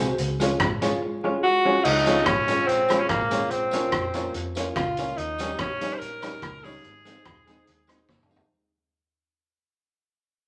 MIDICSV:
0, 0, Header, 1, 7, 480
1, 0, Start_track
1, 0, Key_signature, -5, "major"
1, 0, Tempo, 416089
1, 208, Time_signature, 4, 2, 24, 8
1, 12080, End_track
2, 0, Start_track
2, 0, Title_t, "Upright piano"
2, 0, Program_c, 0, 0
2, 0, Note_on_c, 0, 66, 87
2, 0, Note_on_c, 0, 68, 78
2, 0, Note_on_c, 0, 72, 102
2, 150, Note_off_c, 0, 66, 0
2, 154, Note_off_c, 0, 68, 0
2, 156, Note_off_c, 0, 72, 0
2, 467, Note_on_c, 0, 65, 84
2, 474, Note_on_c, 0, 68, 77
2, 481, Note_on_c, 0, 73, 89
2, 635, Note_off_c, 0, 65, 0
2, 638, Note_off_c, 0, 68, 0
2, 642, Note_off_c, 0, 73, 0
2, 703, Note_on_c, 0, 68, 25
2, 703, Note_on_c, 0, 73, 26
2, 746, Note_off_c, 0, 68, 0
2, 746, Note_off_c, 0, 73, 0
2, 938, Note_on_c, 0, 65, 93
2, 948, Note_on_c, 0, 68, 83
2, 951, Note_on_c, 0, 73, 93
2, 1111, Note_off_c, 0, 65, 0
2, 1116, Note_off_c, 0, 68, 0
2, 1117, Note_off_c, 0, 73, 0
2, 1420, Note_on_c, 0, 65, 85
2, 1429, Note_on_c, 0, 68, 88
2, 1436, Note_on_c, 0, 73, 97
2, 1592, Note_off_c, 0, 65, 0
2, 1596, Note_off_c, 0, 68, 0
2, 1600, Note_off_c, 0, 73, 0
2, 1901, Note_on_c, 0, 65, 84
2, 1906, Note_on_c, 0, 68, 73
2, 1911, Note_on_c, 0, 73, 99
2, 2072, Note_off_c, 0, 65, 0
2, 2075, Note_off_c, 0, 68, 0
2, 2077, Note_off_c, 0, 73, 0
2, 2376, Note_on_c, 0, 65, 94
2, 2386, Note_on_c, 0, 68, 84
2, 2390, Note_on_c, 0, 73, 102
2, 2550, Note_off_c, 0, 65, 0
2, 2555, Note_off_c, 0, 68, 0
2, 2557, Note_off_c, 0, 73, 0
2, 2613, Note_on_c, 0, 73, 25
2, 2615, Note_on_c, 0, 68, 23
2, 2661, Note_off_c, 0, 68, 0
2, 2661, Note_off_c, 0, 73, 0
2, 2863, Note_on_c, 0, 65, 84
2, 2867, Note_on_c, 0, 68, 74
2, 2876, Note_on_c, 0, 73, 96
2, 3033, Note_off_c, 0, 65, 0
2, 3035, Note_off_c, 0, 68, 0
2, 3040, Note_off_c, 0, 73, 0
2, 3339, Note_on_c, 0, 65, 85
2, 3345, Note_on_c, 0, 68, 82
2, 3354, Note_on_c, 0, 73, 93
2, 3511, Note_off_c, 0, 65, 0
2, 3514, Note_off_c, 0, 68, 0
2, 3518, Note_off_c, 0, 73, 0
2, 3815, Note_on_c, 0, 65, 90
2, 3821, Note_on_c, 0, 68, 80
2, 3829, Note_on_c, 0, 73, 99
2, 3989, Note_off_c, 0, 65, 0
2, 3992, Note_off_c, 0, 68, 0
2, 3996, Note_off_c, 0, 73, 0
2, 4296, Note_on_c, 0, 65, 83
2, 4302, Note_on_c, 0, 70, 83
2, 4309, Note_on_c, 0, 73, 99
2, 4469, Note_off_c, 0, 65, 0
2, 4472, Note_off_c, 0, 70, 0
2, 4476, Note_off_c, 0, 73, 0
2, 4773, Note_on_c, 0, 65, 82
2, 4780, Note_on_c, 0, 70, 77
2, 4787, Note_on_c, 0, 73, 94
2, 4947, Note_off_c, 0, 65, 0
2, 4951, Note_off_c, 0, 70, 0
2, 4954, Note_off_c, 0, 73, 0
2, 5257, Note_on_c, 0, 65, 91
2, 5261, Note_on_c, 0, 70, 76
2, 5271, Note_on_c, 0, 73, 90
2, 5430, Note_off_c, 0, 65, 0
2, 5431, Note_off_c, 0, 70, 0
2, 5437, Note_off_c, 0, 73, 0
2, 5741, Note_on_c, 0, 65, 92
2, 5750, Note_on_c, 0, 70, 72
2, 5757, Note_on_c, 0, 73, 86
2, 5911, Note_off_c, 0, 65, 0
2, 5916, Note_off_c, 0, 70, 0
2, 5919, Note_off_c, 0, 73, 0
2, 6222, Note_on_c, 0, 63, 82
2, 6230, Note_on_c, 0, 67, 82
2, 6238, Note_on_c, 0, 73, 97
2, 6392, Note_off_c, 0, 63, 0
2, 6396, Note_off_c, 0, 67, 0
2, 6400, Note_off_c, 0, 73, 0
2, 6457, Note_on_c, 0, 67, 25
2, 6459, Note_on_c, 0, 73, 30
2, 6502, Note_off_c, 0, 67, 0
2, 6502, Note_off_c, 0, 73, 0
2, 6701, Note_on_c, 0, 63, 80
2, 6710, Note_on_c, 0, 67, 80
2, 6718, Note_on_c, 0, 73, 101
2, 6871, Note_off_c, 0, 63, 0
2, 6876, Note_off_c, 0, 67, 0
2, 6879, Note_off_c, 0, 73, 0
2, 7177, Note_on_c, 0, 63, 86
2, 7183, Note_on_c, 0, 67, 74
2, 7187, Note_on_c, 0, 73, 87
2, 7349, Note_off_c, 0, 63, 0
2, 7352, Note_off_c, 0, 67, 0
2, 7354, Note_off_c, 0, 73, 0
2, 7660, Note_on_c, 0, 63, 87
2, 7669, Note_on_c, 0, 67, 83
2, 7674, Note_on_c, 0, 73, 98
2, 7831, Note_off_c, 0, 63, 0
2, 7835, Note_off_c, 0, 67, 0
2, 7837, Note_off_c, 0, 73, 0
2, 8141, Note_on_c, 0, 63, 86
2, 8149, Note_on_c, 0, 68, 85
2, 8155, Note_on_c, 0, 72, 101
2, 8311, Note_off_c, 0, 63, 0
2, 8315, Note_off_c, 0, 68, 0
2, 8318, Note_off_c, 0, 72, 0
2, 8380, Note_on_c, 0, 68, 24
2, 8380, Note_on_c, 0, 72, 27
2, 8423, Note_off_c, 0, 68, 0
2, 8423, Note_off_c, 0, 72, 0
2, 8625, Note_on_c, 0, 63, 84
2, 8632, Note_on_c, 0, 68, 76
2, 8639, Note_on_c, 0, 72, 99
2, 8793, Note_off_c, 0, 63, 0
2, 8797, Note_off_c, 0, 68, 0
2, 8800, Note_off_c, 0, 72, 0
2, 9101, Note_on_c, 0, 63, 94
2, 9109, Note_on_c, 0, 68, 76
2, 9113, Note_on_c, 0, 72, 98
2, 9271, Note_off_c, 0, 63, 0
2, 9275, Note_off_c, 0, 68, 0
2, 9277, Note_off_c, 0, 72, 0
2, 9580, Note_on_c, 0, 63, 90
2, 9585, Note_on_c, 0, 68, 78
2, 9592, Note_on_c, 0, 72, 91
2, 9750, Note_off_c, 0, 63, 0
2, 9753, Note_off_c, 0, 68, 0
2, 9756, Note_off_c, 0, 72, 0
2, 12080, End_track
3, 0, Start_track
3, 0, Title_t, "Tenor saxophone"
3, 0, Program_c, 1, 66
3, 1651, Note_on_c, 1, 66, 101
3, 2122, Note_on_c, 1, 63, 96
3, 2140, Note_off_c, 1, 66, 0
3, 2607, Note_on_c, 1, 61, 104
3, 2624, Note_off_c, 1, 63, 0
3, 3079, Note_on_c, 1, 60, 102
3, 3096, Note_off_c, 1, 61, 0
3, 3453, Note_on_c, 1, 61, 94
3, 3470, Note_off_c, 1, 60, 0
3, 3556, Note_off_c, 1, 61, 0
3, 3563, Note_on_c, 1, 58, 95
3, 4052, Note_on_c, 1, 60, 81
3, 4069, Note_off_c, 1, 58, 0
3, 5009, Note_off_c, 1, 60, 0
3, 5489, Note_on_c, 1, 65, 96
3, 5968, Note_on_c, 1, 63, 100
3, 5986, Note_off_c, 1, 65, 0
3, 6447, Note_off_c, 1, 63, 0
3, 6457, Note_on_c, 1, 61, 102
3, 6846, Note_on_c, 1, 72, 89
3, 6864, Note_off_c, 1, 61, 0
3, 6908, Note_on_c, 1, 70, 118
3, 6925, Note_off_c, 1, 72, 0
3, 7652, Note_on_c, 1, 68, 99
3, 7670, Note_off_c, 1, 70, 0
3, 9324, Note_off_c, 1, 68, 0
3, 12080, End_track
4, 0, Start_track
4, 0, Title_t, "Hollow-body jazz guitar"
4, 0, Program_c, 2, 26
4, 458, Note_on_c, 2, 56, 84
4, 472, Note_on_c, 2, 61, 97
4, 474, Note_on_c, 2, 65, 107
4, 579, Note_off_c, 2, 56, 0
4, 585, Note_off_c, 2, 61, 0
4, 586, Note_off_c, 2, 65, 0
4, 942, Note_on_c, 2, 56, 92
4, 948, Note_on_c, 2, 61, 87
4, 960, Note_on_c, 2, 65, 98
4, 1060, Note_off_c, 2, 56, 0
4, 1063, Note_off_c, 2, 61, 0
4, 1070, Note_off_c, 2, 65, 0
4, 1430, Note_on_c, 2, 56, 74
4, 1440, Note_on_c, 2, 61, 78
4, 1442, Note_on_c, 2, 65, 83
4, 1545, Note_off_c, 2, 56, 0
4, 1549, Note_off_c, 2, 61, 0
4, 1551, Note_off_c, 2, 65, 0
4, 1904, Note_on_c, 2, 56, 81
4, 1910, Note_on_c, 2, 61, 87
4, 1919, Note_on_c, 2, 65, 80
4, 2022, Note_off_c, 2, 56, 0
4, 2024, Note_off_c, 2, 61, 0
4, 2029, Note_off_c, 2, 65, 0
4, 2379, Note_on_c, 2, 56, 94
4, 2391, Note_on_c, 2, 61, 88
4, 2394, Note_on_c, 2, 65, 92
4, 2499, Note_off_c, 2, 56, 0
4, 2505, Note_off_c, 2, 61, 0
4, 2506, Note_off_c, 2, 65, 0
4, 2856, Note_on_c, 2, 56, 81
4, 2860, Note_on_c, 2, 61, 91
4, 2867, Note_on_c, 2, 65, 81
4, 2977, Note_off_c, 2, 56, 0
4, 2980, Note_off_c, 2, 61, 0
4, 2983, Note_off_c, 2, 65, 0
4, 3346, Note_on_c, 2, 56, 95
4, 3352, Note_on_c, 2, 61, 82
4, 3359, Note_on_c, 2, 65, 94
4, 3462, Note_off_c, 2, 56, 0
4, 3465, Note_off_c, 2, 61, 0
4, 3469, Note_off_c, 2, 65, 0
4, 3820, Note_on_c, 2, 56, 80
4, 3828, Note_on_c, 2, 61, 82
4, 3838, Note_on_c, 2, 65, 101
4, 3939, Note_off_c, 2, 56, 0
4, 3943, Note_off_c, 2, 61, 0
4, 3948, Note_off_c, 2, 65, 0
4, 4303, Note_on_c, 2, 58, 82
4, 4314, Note_on_c, 2, 65, 94
4, 4315, Note_on_c, 2, 61, 108
4, 4420, Note_off_c, 2, 58, 0
4, 4426, Note_off_c, 2, 61, 0
4, 4426, Note_off_c, 2, 65, 0
4, 4783, Note_on_c, 2, 58, 94
4, 4786, Note_on_c, 2, 61, 80
4, 4791, Note_on_c, 2, 65, 94
4, 4900, Note_off_c, 2, 58, 0
4, 4902, Note_off_c, 2, 61, 0
4, 4904, Note_off_c, 2, 65, 0
4, 5271, Note_on_c, 2, 58, 80
4, 5276, Note_on_c, 2, 61, 89
4, 5280, Note_on_c, 2, 65, 99
4, 5384, Note_off_c, 2, 58, 0
4, 5386, Note_off_c, 2, 61, 0
4, 5389, Note_off_c, 2, 65, 0
4, 5752, Note_on_c, 2, 58, 83
4, 5757, Note_on_c, 2, 61, 90
4, 5762, Note_on_c, 2, 65, 89
4, 5865, Note_off_c, 2, 58, 0
4, 5867, Note_off_c, 2, 61, 0
4, 5870, Note_off_c, 2, 65, 0
4, 6230, Note_on_c, 2, 55, 92
4, 6236, Note_on_c, 2, 61, 96
4, 6242, Note_on_c, 2, 63, 100
4, 6343, Note_off_c, 2, 55, 0
4, 6346, Note_off_c, 2, 61, 0
4, 6349, Note_off_c, 2, 63, 0
4, 6707, Note_on_c, 2, 55, 91
4, 6713, Note_on_c, 2, 61, 86
4, 6714, Note_on_c, 2, 63, 90
4, 6822, Note_off_c, 2, 55, 0
4, 6825, Note_off_c, 2, 61, 0
4, 6825, Note_off_c, 2, 63, 0
4, 7186, Note_on_c, 2, 55, 80
4, 7194, Note_on_c, 2, 61, 81
4, 7202, Note_on_c, 2, 63, 93
4, 7301, Note_off_c, 2, 55, 0
4, 7305, Note_off_c, 2, 61, 0
4, 7309, Note_off_c, 2, 63, 0
4, 7655, Note_on_c, 2, 55, 85
4, 7660, Note_on_c, 2, 61, 78
4, 7667, Note_on_c, 2, 63, 95
4, 7776, Note_off_c, 2, 55, 0
4, 7778, Note_off_c, 2, 61, 0
4, 7781, Note_off_c, 2, 63, 0
4, 8135, Note_on_c, 2, 56, 91
4, 8143, Note_on_c, 2, 60, 95
4, 8148, Note_on_c, 2, 63, 94
4, 8256, Note_off_c, 2, 56, 0
4, 8260, Note_off_c, 2, 60, 0
4, 8262, Note_off_c, 2, 63, 0
4, 8614, Note_on_c, 2, 56, 90
4, 8621, Note_on_c, 2, 60, 99
4, 8626, Note_on_c, 2, 63, 96
4, 8735, Note_off_c, 2, 56, 0
4, 8739, Note_off_c, 2, 60, 0
4, 8741, Note_off_c, 2, 63, 0
4, 9087, Note_on_c, 2, 56, 72
4, 9096, Note_on_c, 2, 60, 89
4, 9104, Note_on_c, 2, 63, 99
4, 9212, Note_off_c, 2, 56, 0
4, 9216, Note_off_c, 2, 60, 0
4, 9220, Note_off_c, 2, 63, 0
4, 9569, Note_on_c, 2, 56, 75
4, 9576, Note_on_c, 2, 60, 91
4, 9583, Note_on_c, 2, 63, 88
4, 9693, Note_off_c, 2, 56, 0
4, 9696, Note_off_c, 2, 60, 0
4, 9699, Note_off_c, 2, 63, 0
4, 12080, End_track
5, 0, Start_track
5, 0, Title_t, "Fingered electric bass"
5, 0, Program_c, 3, 33
5, 0, Note_on_c, 3, 36, 81
5, 140, Note_off_c, 3, 36, 0
5, 217, Note_on_c, 3, 37, 102
5, 621, Note_off_c, 3, 37, 0
5, 691, Note_on_c, 3, 32, 90
5, 1098, Note_off_c, 3, 32, 0
5, 2136, Note_on_c, 3, 37, 99
5, 2541, Note_off_c, 3, 37, 0
5, 2611, Note_on_c, 3, 32, 83
5, 3017, Note_off_c, 3, 32, 0
5, 3091, Note_on_c, 3, 34, 90
5, 3498, Note_off_c, 3, 34, 0
5, 3570, Note_on_c, 3, 32, 97
5, 3977, Note_off_c, 3, 32, 0
5, 4048, Note_on_c, 3, 34, 97
5, 4456, Note_off_c, 3, 34, 0
5, 4527, Note_on_c, 3, 41, 82
5, 4935, Note_off_c, 3, 41, 0
5, 5010, Note_on_c, 3, 41, 102
5, 5417, Note_off_c, 3, 41, 0
5, 5495, Note_on_c, 3, 37, 92
5, 5899, Note_off_c, 3, 37, 0
5, 5970, Note_on_c, 3, 39, 103
5, 6377, Note_off_c, 3, 39, 0
5, 6450, Note_on_c, 3, 34, 89
5, 6856, Note_off_c, 3, 34, 0
5, 6936, Note_on_c, 3, 34, 100
5, 7340, Note_off_c, 3, 34, 0
5, 7409, Note_on_c, 3, 37, 96
5, 7816, Note_off_c, 3, 37, 0
5, 7900, Note_on_c, 3, 32, 95
5, 8302, Note_off_c, 3, 32, 0
5, 8372, Note_on_c, 3, 39, 82
5, 8777, Note_off_c, 3, 39, 0
5, 8856, Note_on_c, 3, 39, 83
5, 9259, Note_off_c, 3, 39, 0
5, 9335, Note_on_c, 3, 30, 89
5, 9739, Note_off_c, 3, 30, 0
5, 12080, End_track
6, 0, Start_track
6, 0, Title_t, "Muted hollow-body jazz guitar strokes"
6, 1175, Note_on_c, 9, 29, 41
6, 1290, Note_off_c, 9, 29, 0
6, 1657, Note_on_c, 9, 29, 41
6, 1772, Note_off_c, 9, 29, 0
6, 3089, Note_on_c, 9, 29, 41
6, 3205, Note_off_c, 9, 29, 0
6, 3577, Note_on_c, 9, 29, 42
6, 3692, Note_off_c, 9, 29, 0
6, 5017, Note_on_c, 9, 29, 40
6, 5132, Note_off_c, 9, 29, 0
6, 5505, Note_on_c, 9, 29, 38
6, 5620, Note_off_c, 9, 29, 0
6, 6933, Note_on_c, 9, 29, 43
6, 7049, Note_off_c, 9, 29, 0
6, 8845, Note_on_c, 9, 29, 51
6, 8960, Note_off_c, 9, 29, 0
6, 12080, End_track
7, 0, Start_track
7, 0, Title_t, "Drums"
7, 209, Note_on_c, 9, 42, 62
7, 325, Note_off_c, 9, 42, 0
7, 461, Note_on_c, 9, 54, 84
7, 470, Note_on_c, 9, 42, 85
7, 576, Note_off_c, 9, 54, 0
7, 585, Note_off_c, 9, 42, 0
7, 686, Note_on_c, 9, 42, 54
7, 690, Note_on_c, 9, 37, 103
7, 691, Note_on_c, 9, 36, 102
7, 801, Note_off_c, 9, 42, 0
7, 806, Note_off_c, 9, 36, 0
7, 806, Note_off_c, 9, 37, 0
7, 944, Note_on_c, 9, 42, 86
7, 963, Note_on_c, 9, 54, 73
7, 1059, Note_off_c, 9, 42, 0
7, 1078, Note_off_c, 9, 54, 0
7, 2131, Note_on_c, 9, 49, 105
7, 2246, Note_off_c, 9, 49, 0
7, 2377, Note_on_c, 9, 54, 90
7, 2384, Note_on_c, 9, 42, 87
7, 2492, Note_off_c, 9, 54, 0
7, 2499, Note_off_c, 9, 42, 0
7, 2602, Note_on_c, 9, 42, 60
7, 2606, Note_on_c, 9, 37, 111
7, 2609, Note_on_c, 9, 36, 109
7, 2717, Note_off_c, 9, 42, 0
7, 2722, Note_off_c, 9, 37, 0
7, 2724, Note_off_c, 9, 36, 0
7, 2860, Note_on_c, 9, 42, 83
7, 2868, Note_on_c, 9, 54, 73
7, 2975, Note_off_c, 9, 42, 0
7, 2983, Note_off_c, 9, 54, 0
7, 3100, Note_on_c, 9, 42, 74
7, 3215, Note_off_c, 9, 42, 0
7, 3329, Note_on_c, 9, 54, 80
7, 3345, Note_on_c, 9, 37, 84
7, 3349, Note_on_c, 9, 42, 105
7, 3444, Note_off_c, 9, 54, 0
7, 3460, Note_off_c, 9, 37, 0
7, 3464, Note_off_c, 9, 42, 0
7, 3564, Note_on_c, 9, 42, 71
7, 3569, Note_on_c, 9, 36, 110
7, 3571, Note_on_c, 9, 37, 104
7, 3679, Note_off_c, 9, 42, 0
7, 3684, Note_off_c, 9, 36, 0
7, 3686, Note_off_c, 9, 37, 0
7, 3817, Note_on_c, 9, 54, 93
7, 3819, Note_on_c, 9, 42, 93
7, 3933, Note_off_c, 9, 54, 0
7, 3935, Note_off_c, 9, 42, 0
7, 4043, Note_on_c, 9, 42, 56
7, 4159, Note_off_c, 9, 42, 0
7, 4282, Note_on_c, 9, 54, 99
7, 4302, Note_on_c, 9, 42, 84
7, 4397, Note_off_c, 9, 54, 0
7, 4417, Note_off_c, 9, 42, 0
7, 4519, Note_on_c, 9, 42, 57
7, 4524, Note_on_c, 9, 37, 105
7, 4525, Note_on_c, 9, 36, 97
7, 4635, Note_off_c, 9, 42, 0
7, 4639, Note_off_c, 9, 37, 0
7, 4641, Note_off_c, 9, 36, 0
7, 4771, Note_on_c, 9, 42, 76
7, 4790, Note_on_c, 9, 54, 71
7, 4886, Note_off_c, 9, 42, 0
7, 4905, Note_off_c, 9, 54, 0
7, 5008, Note_on_c, 9, 42, 76
7, 5124, Note_off_c, 9, 42, 0
7, 5250, Note_on_c, 9, 54, 87
7, 5266, Note_on_c, 9, 42, 107
7, 5365, Note_off_c, 9, 54, 0
7, 5381, Note_off_c, 9, 42, 0
7, 5491, Note_on_c, 9, 36, 113
7, 5492, Note_on_c, 9, 42, 67
7, 5499, Note_on_c, 9, 37, 104
7, 5606, Note_off_c, 9, 36, 0
7, 5607, Note_off_c, 9, 42, 0
7, 5614, Note_off_c, 9, 37, 0
7, 5733, Note_on_c, 9, 42, 94
7, 5751, Note_on_c, 9, 54, 90
7, 5849, Note_off_c, 9, 42, 0
7, 5866, Note_off_c, 9, 54, 0
7, 5973, Note_on_c, 9, 42, 58
7, 6088, Note_off_c, 9, 42, 0
7, 6211, Note_on_c, 9, 54, 92
7, 6220, Note_on_c, 9, 42, 93
7, 6326, Note_off_c, 9, 54, 0
7, 6335, Note_off_c, 9, 42, 0
7, 6441, Note_on_c, 9, 42, 58
7, 6445, Note_on_c, 9, 37, 117
7, 6448, Note_on_c, 9, 36, 106
7, 6556, Note_off_c, 9, 42, 0
7, 6560, Note_off_c, 9, 37, 0
7, 6564, Note_off_c, 9, 36, 0
7, 6704, Note_on_c, 9, 42, 88
7, 6708, Note_on_c, 9, 54, 65
7, 6820, Note_off_c, 9, 42, 0
7, 6823, Note_off_c, 9, 54, 0
7, 6936, Note_on_c, 9, 42, 64
7, 7052, Note_off_c, 9, 42, 0
7, 7176, Note_on_c, 9, 54, 81
7, 7180, Note_on_c, 9, 37, 73
7, 7184, Note_on_c, 9, 42, 96
7, 7291, Note_off_c, 9, 54, 0
7, 7295, Note_off_c, 9, 37, 0
7, 7299, Note_off_c, 9, 42, 0
7, 7410, Note_on_c, 9, 36, 110
7, 7411, Note_on_c, 9, 42, 67
7, 7418, Note_on_c, 9, 37, 109
7, 7526, Note_off_c, 9, 36, 0
7, 7526, Note_off_c, 9, 42, 0
7, 7533, Note_off_c, 9, 37, 0
7, 7661, Note_on_c, 9, 46, 53
7, 7676, Note_on_c, 9, 54, 91
7, 7776, Note_off_c, 9, 46, 0
7, 7791, Note_off_c, 9, 54, 0
7, 7895, Note_on_c, 9, 42, 63
7, 8010, Note_off_c, 9, 42, 0
7, 8136, Note_on_c, 9, 54, 97
7, 8147, Note_on_c, 9, 42, 85
7, 8252, Note_off_c, 9, 54, 0
7, 8262, Note_off_c, 9, 42, 0
7, 8365, Note_on_c, 9, 42, 60
7, 8369, Note_on_c, 9, 36, 107
7, 8369, Note_on_c, 9, 37, 103
7, 8480, Note_off_c, 9, 42, 0
7, 8484, Note_off_c, 9, 37, 0
7, 8485, Note_off_c, 9, 36, 0
7, 8620, Note_on_c, 9, 42, 74
7, 8628, Note_on_c, 9, 54, 69
7, 8736, Note_off_c, 9, 42, 0
7, 8743, Note_off_c, 9, 54, 0
7, 8849, Note_on_c, 9, 42, 75
7, 8965, Note_off_c, 9, 42, 0
7, 9082, Note_on_c, 9, 54, 79
7, 9099, Note_on_c, 9, 37, 76
7, 9103, Note_on_c, 9, 42, 99
7, 9198, Note_off_c, 9, 54, 0
7, 9215, Note_off_c, 9, 37, 0
7, 9219, Note_off_c, 9, 42, 0
7, 9330, Note_on_c, 9, 36, 109
7, 9331, Note_on_c, 9, 38, 62
7, 9445, Note_off_c, 9, 36, 0
7, 9447, Note_off_c, 9, 38, 0
7, 9491, Note_on_c, 9, 45, 81
7, 9583, Note_on_c, 9, 54, 96
7, 9606, Note_off_c, 9, 45, 0
7, 9649, Note_on_c, 9, 43, 117
7, 9699, Note_off_c, 9, 54, 0
7, 9765, Note_off_c, 9, 43, 0
7, 12080, End_track
0, 0, End_of_file